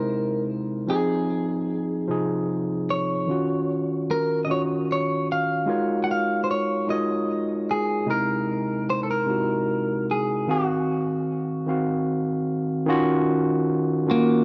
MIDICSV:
0, 0, Header, 1, 3, 480
1, 0, Start_track
1, 0, Tempo, 800000
1, 524, Time_signature, 6, 3, 24, 8
1, 8667, End_track
2, 0, Start_track
2, 0, Title_t, "Clean electric guitar"
2, 0, Program_c, 0, 27
2, 0, Note_on_c, 0, 70, 58
2, 268, Note_off_c, 0, 70, 0
2, 539, Note_on_c, 0, 68, 66
2, 1707, Note_off_c, 0, 68, 0
2, 1743, Note_on_c, 0, 73, 74
2, 2429, Note_off_c, 0, 73, 0
2, 2466, Note_on_c, 0, 70, 75
2, 2640, Note_off_c, 0, 70, 0
2, 2668, Note_on_c, 0, 75, 59
2, 2697, Note_off_c, 0, 75, 0
2, 2706, Note_on_c, 0, 73, 77
2, 2768, Note_off_c, 0, 73, 0
2, 2954, Note_on_c, 0, 73, 78
2, 3163, Note_off_c, 0, 73, 0
2, 3192, Note_on_c, 0, 77, 80
2, 3592, Note_off_c, 0, 77, 0
2, 3623, Note_on_c, 0, 78, 61
2, 3654, Note_off_c, 0, 78, 0
2, 3667, Note_on_c, 0, 77, 87
2, 3840, Note_off_c, 0, 77, 0
2, 3863, Note_on_c, 0, 72, 61
2, 3894, Note_off_c, 0, 72, 0
2, 3905, Note_on_c, 0, 73, 76
2, 4140, Note_off_c, 0, 73, 0
2, 4142, Note_on_c, 0, 75, 70
2, 4589, Note_off_c, 0, 75, 0
2, 4625, Note_on_c, 0, 68, 73
2, 4838, Note_off_c, 0, 68, 0
2, 4864, Note_on_c, 0, 70, 73
2, 5338, Note_off_c, 0, 70, 0
2, 5341, Note_on_c, 0, 72, 80
2, 5412, Note_off_c, 0, 72, 0
2, 5419, Note_on_c, 0, 69, 58
2, 5452, Note_off_c, 0, 69, 0
2, 5464, Note_on_c, 0, 70, 77
2, 6030, Note_off_c, 0, 70, 0
2, 6067, Note_on_c, 0, 68, 64
2, 6302, Note_off_c, 0, 68, 0
2, 6305, Note_on_c, 0, 66, 59
2, 7231, Note_off_c, 0, 66, 0
2, 8466, Note_on_c, 0, 58, 85
2, 8667, Note_off_c, 0, 58, 0
2, 8667, End_track
3, 0, Start_track
3, 0, Title_t, "Tine electric piano"
3, 0, Program_c, 1, 4
3, 0, Control_c, 1, 64, 127
3, 0, Note_on_c, 1, 48, 57
3, 0, Note_on_c, 1, 56, 52
3, 0, Note_on_c, 1, 63, 53
3, 0, Note_on_c, 1, 64, 52
3, 0, Note_on_c, 1, 70, 80
3, 0, Note_on_c, 1, 72, 65
3, 469, Note_off_c, 1, 48, 0
3, 472, Note_off_c, 1, 56, 0
3, 474, Note_off_c, 1, 63, 0
3, 478, Note_off_c, 1, 64, 0
3, 481, Note_off_c, 1, 72, 0
3, 522, Note_on_c, 1, 53, 73
3, 531, Control_c, 1, 64, 0
3, 531, Note_on_c, 1, 60, 68
3, 535, Note_on_c, 1, 63, 70
3, 536, Note_off_c, 1, 70, 0
3, 544, Note_on_c, 1, 68, 85
3, 629, Control_c, 1, 64, 127
3, 1189, Note_off_c, 1, 53, 0
3, 1194, Note_off_c, 1, 60, 0
3, 1196, Note_off_c, 1, 63, 0
3, 1200, Note_off_c, 1, 68, 0
3, 1245, Note_on_c, 1, 53, 69
3, 1254, Note_on_c, 1, 48, 57
3, 1263, Note_on_c, 1, 63, 61
3, 1266, Note_on_c, 1, 68, 77
3, 1911, Note_off_c, 1, 53, 0
3, 1915, Note_off_c, 1, 48, 0
3, 1920, Note_off_c, 1, 63, 0
3, 1921, Note_off_c, 1, 68, 0
3, 1961, Note_on_c, 1, 51, 65
3, 1970, Control_c, 1, 64, 0
3, 1972, Note_on_c, 1, 61, 65
3, 1977, Note_on_c, 1, 65, 64
3, 1987, Note_on_c, 1, 66, 78
3, 2070, Control_c, 1, 64, 127
3, 2629, Note_off_c, 1, 51, 0
3, 2634, Note_off_c, 1, 61, 0
3, 2636, Note_off_c, 1, 65, 0
3, 2642, Note_off_c, 1, 66, 0
3, 2680, Note_on_c, 1, 51, 56
3, 2687, Note_on_c, 1, 61, 51
3, 2698, Note_on_c, 1, 65, 51
3, 2700, Note_on_c, 1, 66, 67
3, 3348, Note_off_c, 1, 51, 0
3, 3351, Note_off_c, 1, 61, 0
3, 3357, Note_off_c, 1, 65, 0
3, 3358, Note_off_c, 1, 66, 0
3, 3395, Note_on_c, 1, 56, 76
3, 3401, Note_on_c, 1, 63, 64
3, 3406, Note_on_c, 1, 65, 67
3, 3411, Note_on_c, 1, 66, 62
3, 3412, Control_c, 1, 64, 0
3, 3414, Note_on_c, 1, 70, 66
3, 3418, Note_on_c, 1, 73, 79
3, 3521, Control_c, 1, 64, 127
3, 4066, Note_off_c, 1, 56, 0
3, 4069, Note_off_c, 1, 63, 0
3, 4071, Note_off_c, 1, 65, 0
3, 4074, Note_off_c, 1, 66, 0
3, 4075, Note_off_c, 1, 70, 0
3, 4077, Note_off_c, 1, 73, 0
3, 4123, Note_on_c, 1, 56, 54
3, 4126, Note_on_c, 1, 63, 57
3, 4133, Note_on_c, 1, 65, 54
3, 4134, Note_on_c, 1, 66, 48
3, 4141, Note_on_c, 1, 70, 49
3, 4144, Note_on_c, 1, 73, 62
3, 4790, Note_off_c, 1, 56, 0
3, 4791, Note_off_c, 1, 63, 0
3, 4795, Note_off_c, 1, 65, 0
3, 4795, Note_off_c, 1, 66, 0
3, 4799, Note_off_c, 1, 70, 0
3, 4800, Note_off_c, 1, 73, 0
3, 4838, Note_on_c, 1, 48, 73
3, 4841, Note_on_c, 1, 56, 66
3, 4849, Note_on_c, 1, 63, 63
3, 4851, Control_c, 1, 64, 0
3, 4852, Note_on_c, 1, 64, 65
3, 4858, Note_on_c, 1, 70, 81
3, 4957, Control_c, 1, 64, 127
3, 5507, Note_off_c, 1, 48, 0
3, 5509, Note_off_c, 1, 56, 0
3, 5512, Note_off_c, 1, 63, 0
3, 5514, Note_off_c, 1, 64, 0
3, 5517, Note_off_c, 1, 70, 0
3, 5557, Note_on_c, 1, 48, 59
3, 5563, Note_on_c, 1, 56, 52
3, 5567, Note_on_c, 1, 63, 53
3, 5576, Note_on_c, 1, 64, 51
3, 5578, Note_on_c, 1, 66, 68
3, 6226, Note_off_c, 1, 48, 0
3, 6229, Note_off_c, 1, 56, 0
3, 6231, Note_off_c, 1, 63, 0
3, 6236, Note_off_c, 1, 64, 0
3, 6237, Note_off_c, 1, 66, 0
3, 6284, Note_on_c, 1, 51, 77
3, 6290, Note_on_c, 1, 60, 71
3, 6291, Control_c, 1, 64, 0
3, 6295, Note_on_c, 1, 77, 69
3, 6303, Note_on_c, 1, 66, 81
3, 6406, Control_c, 1, 64, 127
3, 6950, Note_off_c, 1, 51, 0
3, 6953, Note_off_c, 1, 60, 0
3, 6955, Note_off_c, 1, 77, 0
3, 6959, Note_off_c, 1, 66, 0
3, 7000, Note_on_c, 1, 51, 65
3, 7008, Note_on_c, 1, 60, 64
3, 7015, Note_on_c, 1, 77, 62
3, 7020, Note_on_c, 1, 66, 69
3, 7668, Note_off_c, 1, 51, 0
3, 7672, Note_off_c, 1, 60, 0
3, 7675, Note_off_c, 1, 77, 0
3, 7678, Note_off_c, 1, 66, 0
3, 7717, Note_on_c, 1, 51, 98
3, 7728, Note_on_c, 1, 61, 90
3, 7733, Control_c, 1, 64, 0
3, 7734, Note_on_c, 1, 65, 88
3, 7739, Note_on_c, 1, 66, 113
3, 7845, Control_c, 1, 64, 127
3, 8387, Note_off_c, 1, 51, 0
3, 8392, Note_off_c, 1, 61, 0
3, 8395, Note_off_c, 1, 65, 0
3, 8397, Note_off_c, 1, 66, 0
3, 8437, Note_on_c, 1, 51, 66
3, 8446, Note_on_c, 1, 61, 61
3, 8451, Note_on_c, 1, 65, 63
3, 8458, Note_on_c, 1, 66, 75
3, 8667, Note_off_c, 1, 51, 0
3, 8667, Note_off_c, 1, 61, 0
3, 8667, Note_off_c, 1, 65, 0
3, 8667, Note_off_c, 1, 66, 0
3, 8667, End_track
0, 0, End_of_file